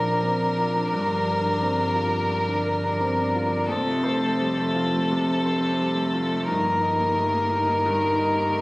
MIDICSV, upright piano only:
0, 0, Header, 1, 2, 480
1, 0, Start_track
1, 0, Tempo, 698487
1, 635, Time_signature, 4, 2, 24, 8
1, 3513, Tempo, 684151
1, 5969, End_track
2, 0, Start_track
2, 0, Title_t, "Upright piano"
2, 0, Program_c, 0, 0
2, 0, Control_c, 0, 64, 127
2, 0, Note_on_c, 0, 46, 61
2, 0, Note_on_c, 0, 53, 61
2, 0, Note_on_c, 0, 60, 53
2, 0, Note_on_c, 0, 62, 46
2, 0, Note_on_c, 0, 65, 58
2, 0, Note_on_c, 0, 70, 46
2, 48, Note_off_c, 0, 62, 0
2, 48, Note_on_c, 0, 62, 44
2, 108, Note_off_c, 0, 70, 0
2, 161, Note_off_c, 0, 60, 0
2, 161, Note_on_c, 0, 60, 47
2, 234, Note_off_c, 0, 62, 0
2, 278, Note_off_c, 0, 60, 0
2, 279, Note_on_c, 0, 62, 48
2, 401, Note_off_c, 0, 65, 0
2, 401, Note_on_c, 0, 65, 48
2, 470, Note_off_c, 0, 62, 0
2, 519, Note_on_c, 0, 62, 46
2, 590, Note_off_c, 0, 65, 0
2, 635, Note_on_c, 0, 43, 66
2, 637, Note_off_c, 0, 62, 0
2, 647, Control_c, 0, 64, 0
2, 653, Note_off_c, 0, 46, 0
2, 653, Note_off_c, 0, 53, 0
2, 754, Note_on_c, 0, 62, 47
2, 756, Control_c, 0, 64, 127
2, 877, Note_on_c, 0, 70, 56
2, 945, Note_off_c, 0, 62, 0
2, 998, Note_on_c, 0, 62, 49
2, 1066, Note_off_c, 0, 70, 0
2, 1106, Note_on_c, 0, 60, 49
2, 1186, Note_off_c, 0, 62, 0
2, 1227, Note_on_c, 0, 62, 50
2, 1228, Note_off_c, 0, 60, 0
2, 1339, Note_on_c, 0, 65, 54
2, 1421, Note_off_c, 0, 62, 0
2, 1468, Note_on_c, 0, 62, 45
2, 1537, Note_off_c, 0, 65, 0
2, 1563, Note_off_c, 0, 43, 0
2, 1584, Note_on_c, 0, 50, 60
2, 1662, Note_off_c, 0, 62, 0
2, 1708, Note_on_c, 0, 62, 49
2, 1779, Note_off_c, 0, 50, 0
2, 1820, Note_on_c, 0, 70, 53
2, 1901, Note_off_c, 0, 62, 0
2, 1946, Note_on_c, 0, 62, 47
2, 2017, Note_off_c, 0, 70, 0
2, 2063, Note_on_c, 0, 60, 46
2, 2140, Note_off_c, 0, 62, 0
2, 2184, Note_on_c, 0, 62, 45
2, 2187, Note_off_c, 0, 60, 0
2, 2303, Note_on_c, 0, 65, 48
2, 2380, Note_off_c, 0, 62, 0
2, 2421, Note_on_c, 0, 62, 47
2, 2499, Note_off_c, 0, 65, 0
2, 2534, Note_on_c, 0, 41, 59
2, 2545, Note_off_c, 0, 62, 0
2, 2562, Control_c, 0, 64, 0
2, 2655, Note_on_c, 0, 57, 48
2, 2657, Control_c, 0, 64, 127
2, 2773, Note_on_c, 0, 72, 55
2, 2854, Note_off_c, 0, 57, 0
2, 2904, Note_on_c, 0, 57, 48
2, 2973, Note_off_c, 0, 72, 0
2, 3025, Note_on_c, 0, 55, 51
2, 3100, Note_off_c, 0, 57, 0
2, 3144, Note_on_c, 0, 57, 53
2, 3148, Note_off_c, 0, 55, 0
2, 3261, Note_on_c, 0, 65, 53
2, 3341, Note_off_c, 0, 57, 0
2, 3384, Note_on_c, 0, 57, 45
2, 3459, Note_off_c, 0, 65, 0
2, 3477, Note_off_c, 0, 41, 0
2, 3511, Note_on_c, 0, 48, 62
2, 3581, Note_off_c, 0, 57, 0
2, 3633, Note_on_c, 0, 57, 48
2, 3706, Note_off_c, 0, 48, 0
2, 3752, Note_on_c, 0, 72, 53
2, 3826, Note_off_c, 0, 57, 0
2, 3871, Note_on_c, 0, 57, 52
2, 3945, Note_off_c, 0, 72, 0
2, 3994, Note_on_c, 0, 55, 45
2, 4064, Note_off_c, 0, 57, 0
2, 4103, Note_on_c, 0, 57, 50
2, 4113, Note_off_c, 0, 55, 0
2, 4232, Note_on_c, 0, 65, 46
2, 4299, Note_off_c, 0, 57, 0
2, 4351, Note_on_c, 0, 57, 50
2, 4424, Note_off_c, 0, 65, 0
2, 4467, Note_on_c, 0, 43, 60
2, 4471, Note_off_c, 0, 57, 0
2, 4485, Control_c, 0, 64, 0
2, 4578, Control_c, 0, 64, 127
2, 4583, Note_on_c, 0, 58, 50
2, 4711, Note_on_c, 0, 75, 54
2, 4778, Note_off_c, 0, 58, 0
2, 4835, Note_on_c, 0, 58, 52
2, 4902, Note_off_c, 0, 75, 0
2, 4956, Note_on_c, 0, 57, 47
2, 5024, Note_off_c, 0, 58, 0
2, 5073, Note_off_c, 0, 57, 0
2, 5075, Note_on_c, 0, 58, 56
2, 5198, Note_on_c, 0, 63, 61
2, 5265, Note_off_c, 0, 58, 0
2, 5320, Note_on_c, 0, 58, 48
2, 5387, Note_off_c, 0, 63, 0
2, 5401, Note_off_c, 0, 43, 0
2, 5437, Note_on_c, 0, 43, 74
2, 5508, Note_off_c, 0, 58, 0
2, 5547, Note_on_c, 0, 55, 53
2, 5673, Note_on_c, 0, 75, 53
2, 5742, Note_off_c, 0, 55, 0
2, 5790, Note_on_c, 0, 58, 55
2, 5865, Note_off_c, 0, 75, 0
2, 5910, Note_on_c, 0, 57, 55
2, 5969, Note_off_c, 0, 43, 0
2, 5969, Note_off_c, 0, 57, 0
2, 5969, Note_off_c, 0, 58, 0
2, 5969, End_track
0, 0, End_of_file